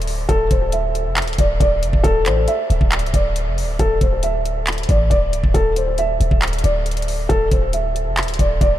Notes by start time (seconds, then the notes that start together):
Already playing: D1 D5
0.02 closed hi-hat
0.07 open hi-hat
0.29 D1 A4, kick, closed hi-hat
0.51 D1 C5, kick, closed hi-hat
0.72 E5, closed hi-hat
0.95 closed hi-hat
1.06 F1
1.17 clap, closed hi-hat
1.22 D1, closed hi-hat
1.28 closed hi-hat
1.33 closed hi-hat
1.39 D1 D5, kick, closed hi-hat
1.60 D1 D5, kick, closed hi-hat
1.82 F1, closed hi-hat
1.93 D1, kick
2.04 D1 A4, kick, closed hi-hat
2.26 A1 C5, clap, closed hi-hat
2.48 E5, closed hi-hat
2.70 D1, closed hi-hat
2.81 D1, kick
2.92 clap, closed hi-hat
2.99 C1, closed hi-hat
3.06 closed hi-hat
3.14 D1 D5, kick, closed hi-hat
3.36 closed hi-hat
3.46 F1
3.58 open hi-hat
3.63 D1
3.79 D1 A4, kick, closed hi-hat
4.01 D1 C5, kick, closed hi-hat
4.23 E5, closed hi-hat
4.46 closed hi-hat
4.67 clap, closed hi-hat
4.72 closed hi-hat
4.78 closed hi-hat
4.83 closed hi-hat
4.89 A1 D5, kick, closed hi-hat
5.10 D1 D5, kick, closed hi-hat
5.33 C1, closed hi-hat
5.44 D1, kick
5.54 D1 A4, kick, closed hi-hat
5.76 C5, closed hi-hat
5.98 E5, closed hi-hat
6.20 D1, closed hi-hat
6.31 D1, kick
6.42 clap, closed hi-hat
6.48 closed hi-hat
6.53 closed hi-hat
6.59 closed hi-hat
6.63 D1 D5, closed hi-hat
6.86 closed hi-hat
6.91 closed hi-hat
6.97 closed hi-hat
7.02 closed hi-hat
7.08 open hi-hat
7.29 D1 A4, kick, closed hi-hat
7.51 D1 C5, kick, closed hi-hat
7.73 E5, closed hi-hat
7.96 closed hi-hat
8.06 F1
8.17 clap, closed hi-hat
8.23 D1, closed hi-hat
8.28 closed hi-hat
8.34 closed hi-hat
8.39 D1 D5, kick, closed hi-hat
8.61 D1 D5, kick, closed hi-hat